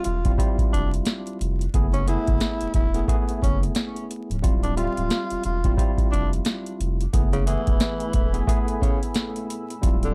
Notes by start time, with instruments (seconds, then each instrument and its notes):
Already playing: tine electric piano G3 C4 F4 E5
0.04 sub bass E1, tenor saxophone F4, closed hi-hat
0.25 tine electric piano G3 C4 E4 F4, kick, closed hi-hat
0.38 tine electric piano G3 C4 E4 F4, kick, closed hi-hat
0.58 kick, closed hi-hat
0.73 sub bass F1, tenor saxophone D4, closed hi-hat
0.94 closed hi-hat
1.05 snare, closed hi-hat
1.27 closed hi-hat
1.41 sub bass F1, closed hi-hat
1.61 closed hi-hat
1.74 sub bass F#1, tine electric piano A3 B3 E4 G#4, kick, closed hi-hat
1.93 tenor saxophone C#4, closed hi-hat
2.07 tine electric piano A3 B3 E4 G#4, tenor saxophone E4, closed hi-hat
2.27 sub bass F#1, kick, closed hi-hat
2.41 snare, closed hi-hat
2.61 sub bass E1, closed hi-hat
2.74 sub bass E1, tenor saxophone E4, kick, closed hi-hat
2.94 tine electric piano A3 B3 E4 G#4, closed hi-hat
3.08 tine electric piano A3 B3 E4 G#4, kick, closed hi-hat
3.29 closed hi-hat
3.42 sub bass F#1, tenor saxophone C#4, kick, closed hi-hat
3.63 closed hi-hat
3.75 snare, closed hi-hat
3.96 closed hi-hat
4.11 closed hi-hat
4.30 sub bass C#1, closed hi-hat
4.42 sub bass D1, tine electric piano G3 C4 E4 F4, kick, closed hi-hat
4.63 tenor saxophone D4, closed hi-hat
4.76 tine electric piano G3 C4 F4 E5, tenor saxophone F4, closed hi-hat
4.97 sub bass D1, closed hi-hat
5.10 snare, closed hi-hat
5.30 sub bass E1, closed hi-hat
5.44 sub bass E1, tenor saxophone F4, closed hi-hat
5.64 tine electric piano G3 C4 E4 F4, kick, closed hi-hat
5.77 tine electric piano G3 C4 E4 F4, kick, closed hi-hat
5.98 kick, closed hi-hat
6.11 sub bass F1, tenor saxophone D4, closed hi-hat
6.33 closed hi-hat
6.45 snare, closed hi-hat
6.66 closed hi-hat
6.80 sub bass F1, closed hi-hat
7.01 closed hi-hat
7.12 sub bass F#1, analog synth pad A3 G#5 B5 E6, tine electric piano A3 B3 E4 G#4, kick, closed hi-hat
7.33 tenor saxophone C#3, closed hi-hat
7.46 tenor saxophone E3, tine electric piano A3 B3 E4 G#4, closed hi-hat
7.67 sub bass E1, kick, closed hi-hat
7.80 snare, closed hi-hat
8.00 closed hi-hat
8.13 sub bass E1, tenor saxophone E3, kick, closed hi-hat
8.33 tine electric piano A3 B3 E4 G#4, closed hi-hat
8.47 tine electric piano A3 B3 E4 G#4, kick, closed hi-hat
8.68 closed hi-hat
8.82 tenor saxophone C#3, kick, closed hi-hat
9.03 closed hi-hat
9.14 snare, closed hi-hat
9.36 closed hi-hat
9.50 closed hi-hat
9.70 closed hi-hat
9.82 sub bass D1, tine electric piano G3 C4 E4 F4, analog synth pad G4 E5 C6, kick, closed hi-hat
10.03 tenor saxophone D3, closed hi-hat